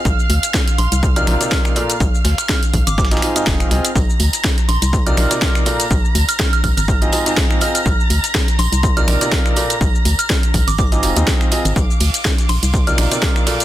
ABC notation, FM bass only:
X:1
M:4/4
L:1/16
Q:"Swing 16ths" 1/4=123
K:Bb
V:1 name="FM bass" clef=bass
B,,, z D,, z3 B,,, C,,3 B,,, z4 z | B,,, z D,, z3 B,,, _A,,,3 z2 F,,, z C,, z | B,,, z D,, z3 B,,, C,,3 B,,, z4 z | B,,, z D,, z3 B,,, _A,,,3 z6 |
B,,, z D,, z3 B,,, C,,3 B,,, z4 z | B,,, z D,, z3 B,,, _A,,,3 F,,, E,, z3 A,,, | B,,, z D,, z3 B,,, C,,3 B,,, z4 z |]